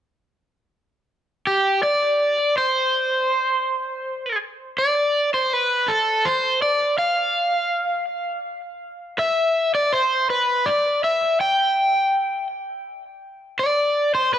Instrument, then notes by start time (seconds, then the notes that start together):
overdriven electric guitar
1.47 G4
1.83 D5
2.58 C5
4.78 D5
5.34 C5
5.53 B4
5.88 A4
6.25 C5
6.62 D5
6.98 F5
9.19 E5
9.75 D5
9.93 C5
10.30 B4
10.66 D5
11.04 E5
11.41 G5
13.59 D5
14.15 C5
14.34 B4